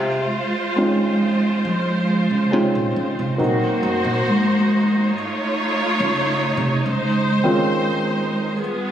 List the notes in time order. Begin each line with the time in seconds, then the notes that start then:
Already playing: C3 G#3 F4 C5
0.76 G#3 C4 C#4 D#4 F4
1.65 F3
2.31 C#3
2.51 C3 G#3 C4 C#4 D#4 F4
2.75 A#2
2.96 C#3
3.19 C3
3.38 A#2 F#3 A#3 C4 D#4 F#4 C5
3.42 A#3 F#4
3.62 D#2
3.83 F#2
4.04 A#2
4.26 G#2
5.12 A3 F4 C#5
6.00 C#3
6.57 C3
6.85 C#3 G#3 C5
7.44 D#3 G#3 C4 C#4 F4
8.58 G3 B3 F4 G#4